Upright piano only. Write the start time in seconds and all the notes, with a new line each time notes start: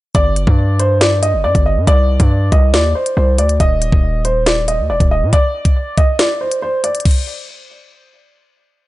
0.15 D5
0.80 C5
1.01 D5
1.23 D#5
1.44 D5
1.66 D#5
1.87 D5
2.52 D#5
2.74 D5
2.95 C5
3.17 C5
3.39 D5
3.60 D#5
4.25 C5
4.46 D5
4.68 D#5
4.90 D5
5.11 D#5
5.33 D5
5.98 D#5
6.19 D5
6.41 C5
6.62 C5
6.84 D5